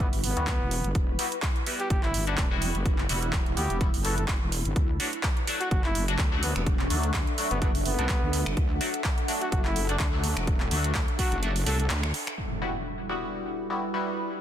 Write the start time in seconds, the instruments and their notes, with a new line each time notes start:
Already playing: wobble bass G1, ambient pad E4 B4
0.00 kick, closed hi-hat
0.13 open hi-hat
0.24 muted trumpet B3, open hi-hat
0.37 wobble bass D2, synth stab G3 B3 E4 F#4, closed hi-hat
0.47 kick, clap, closed hi-hat
0.61 wobble bass E1
0.71 open hi-hat
0.84 wobble bass G1, closed hi-hat
0.95 wobble bass E1, kick, closed hi-hat
1.19 synth stab G3 B3 E4 F#4, open hi-hat
1.32 closed hi-hat
1.42 kick, clap, closed hi-hat
1.56 closed hi-hat
1.66 synth stab G3 B3 E4 F#4, open hi-hat
1.80 muted trumpet G4, closed hi-hat
1.90 wobble bass G1, muted trumpet G4, kick, closed hi-hat
2.03 muted trumpet E4, clap
2.14 open hi-hat
2.27 synth stab G3 B3 E4 F#4, muted trumpet D4, closed hi-hat
2.38 wobble bass E1, muted trumpet D4, kick, clap, closed hi-hat
2.51 synth stab G3 B3 E4 F#4
2.62 open hi-hat
2.75 wobble bass F#1, closed hi-hat
2.86 kick, closed hi-hat
2.98 clap
3.09 wobble bass E1, synth stab G3 B3 E4 F#4, open hi-hat
3.22 closed hi-hat
3.33 kick, clap, closed hi-hat
3.46 wobble bass E1, closed hi-hat
3.57 wobble bass D2, synth stab G3 B3 E4 F#4, muted trumpet G4, open hi-hat
3.70 wobble bass E1, closed hi-hat
3.81 synth stab G3 B3 E4 F#4, kick, closed hi-hat
3.94 wobble bass F#1, open hi-hat
4.05 synth stab G3 B3 E4 F#4, muted trumpet A4, open hi-hat
4.18 muted trumpet A4, closed hi-hat
4.28 kick, clap, closed hi-hat
4.42 wobble bass E1
4.52 open hi-hat
4.65 wobble bass G1, closed hi-hat
4.76 wobble bass D2, ambient pad D4, kick, closed hi-hat
5.00 synth stab F#3 A3 D4 F#4, open hi-hat
5.13 closed hi-hat
5.22 ambient pad A4, kick, clap, closed hi-hat
5.37 closed hi-hat
5.47 synth stab F#3 A3 D4 F#4, ambient pad E5, open hi-hat
5.61 muted trumpet F#4, closed hi-hat
5.71 wobble bass F#1, muted trumpet F#4, kick, closed hi-hat
5.84 muted trumpet E4, clap
5.95 open hi-hat
6.08 synth stab F#3 A3 D4 F#4, closed hi-hat
6.19 wobble bass D2, kick, clap, closed hi-hat
6.32 synth stab F#3 A3 D4 F#4
6.43 muted trumpet B3, open hi-hat
6.56 wobble bass E1, muted trumpet B3, finger snap, closed hi-hat
6.61 ambient pad F#5
6.66 kick, closed hi-hat
6.79 clap
6.90 wobble bass D2, synth stab F#3 A3 D4 F#4, open hi-hat
7.03 closed hi-hat
7.14 kick, clap, closed hi-hat
7.27 closed hi-hat
7.38 synth stab F#3 A3 D4 F#4, open hi-hat
7.51 wobble bass F#1, muted trumpet B3, closed hi-hat
7.62 synth stab F#3 A3 D4 F#4, muted trumpet B3, kick, closed hi-hat
7.75 open hi-hat
7.85 muted trumpet B3, open hi-hat
7.99 wobble bass C2, synth stab F#3 A3 D4 F#4, closed hi-hat
8.09 kick, clap, closed hi-hat
8.22 wobble bass D2
8.33 open hi-hat
8.46 wobble bass F#1, finger snap, closed hi-hat
8.57 wobble bass D2, kick, closed hi-hat
8.81 synth stab F#3 A3 D4 F#4, open hi-hat
8.94 closed hi-hat
9.04 kick, clap, closed hi-hat
9.18 closed hi-hat
9.28 synth stab F#3 A3 D4 F#4, open hi-hat
9.41 muted trumpet F#4, closed hi-hat
9.52 wobble bass F#1, muted trumpet F#4, kick, closed hi-hat
9.65 muted trumpet E4, clap
9.76 open hi-hat
9.89 synth stab F#3 A3 D4 F#4, muted trumpet D4, closed hi-hat
9.99 wobble bass D2, muted trumpet D4, kick, clap, closed hi-hat
10.13 synth stab F#3 A3 D4 F#4
10.24 open hi-hat
10.37 wobble bass E1, finger snap, closed hi-hat
10.47 kick, closed hi-hat
10.60 clap
10.71 wobble bass D2, synth stab F#3 A3 D4 F#4, open hi-hat
10.84 closed hi-hat
10.95 kick, clap, closed hi-hat
11.08 closed hi-hat
11.19 synth stab F#3 A3 D4 F#4, muted trumpet F#4, kick, open hi-hat
11.32 wobble bass F#1, closed hi-hat
11.43 synth stab F#3 A3 D4 F#4, closed hi-hat
11.56 open hi-hat
11.66 wobble bass C2, synth stab F#3 A3 D4 F#4, muted trumpet A4, open hi-hat
11.80 muted trumpet A4, closed hi-hat
11.90 wobble bass D2, clap, closed hi-hat
12.03 finger snap
12.14 open hi-hat
12.27 finger snap, closed hi-hat
12.38 analog synth pad G3 E4 F#4, ambient pad E4, impact
12.62 synth stab G3 B3 E4 F#4
12.85 ambient pad B4
13.09 synth stab G3 B3 E4 F#4
13.70 synth stab G3 B3 E4 F#4
13.94 synth stab G3 B3 E4 F#4